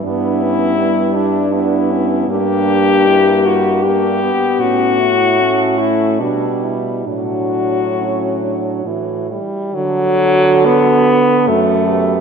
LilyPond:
<<
  \new Staff \with { instrumentName = "French horn" } { \time 3/4 \key d \major \tempo 4 = 76 e'4. d'8 e'4 | g'4. fis'8 g'4 | fis'4. e'8 d'8 r8 | fis'2 r4 |
a'2 a'8 b'8 | }
  \new Staff \with { instrumentName = "French horn" } { \time 3/4 \key d \major d'8 cis'8 b8 e'8 d'8 cis'8 | d'4 e'8 e'8 d'8 r8 | cis'8 e'8 cis'4 d'8 e'8 | d'4 cis'8 d'8 fis'8 e'8 |
fis'2 fis'8 g'8 | }
  \new Staff \with { instrumentName = "French horn" } { \time 3/4 \key d \major b4 g4 b4 | bes4 bes4 bes8 b8~ | b8 r8 a4 g4 | fis2 e8 g8 |
fis4 b4 a4 | }
  \new Staff \with { instrumentName = "French horn" } { \clef bass \time 3/4 \key d \major g,2. | g,2~ g,8 r8 | a,2 b,4 | a,2 a,8 r8 |
d2 fis,4 | }
>>